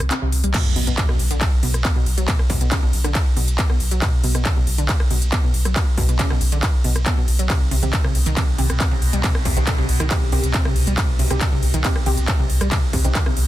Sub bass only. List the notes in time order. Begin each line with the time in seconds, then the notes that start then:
0.00 C2
0.22 C2
0.32 C2
0.44 C2
0.65 B1
0.76 B1
0.87 B1
1.09 B1
1.19 B1
1.31 B1
1.53 B1
1.63 B1
1.74 B1
1.96 B1
2.06 B1
2.18 B1
2.39 B1
2.50 B1
2.61 B1
2.83 B1
2.93 B1
3.05 B1
3.26 B1
3.37 B1
3.48 B1
3.70 B1
3.80 B1
3.92 B1
4.13 B1
4.24 B1
4.35 B1
4.57 B1
4.67 B1
4.78 B1
5.00 B1
5.11 B1
5.22 B1
5.44 B1
5.54 B1
5.65 B1
5.87 B1
5.98 B1
6.09 B1
6.30 B1
6.41 B1
6.52 B1
6.74 B1
6.84 B1
6.96 B1
7.17 B1
7.28 B1
7.39 B1
7.61 C2
7.71 C2
7.83 C2
8.04 C2
8.15 C2
8.26 C2
8.48 C2
8.58 C2
8.70 C2
8.91 C2
9.02 C2
9.13 C2
9.35 C2
9.45 C2
9.57 C2
9.78 C2
9.89 C2
10.00 C2
10.22 C2
10.32 C2
10.43 C2
10.65 C2
10.76 C2
10.87 C2
11.09 C2
11.19 C2
11.30 C2
11.52 C2
11.62 C2
11.74 C2
11.96 C2
12.06 C2
12.17 C2
12.39 C2
12.50 C2
12.61 C2
12.83 C2
12.93 C2
13.04 C2
13.26 C2
13.37 C2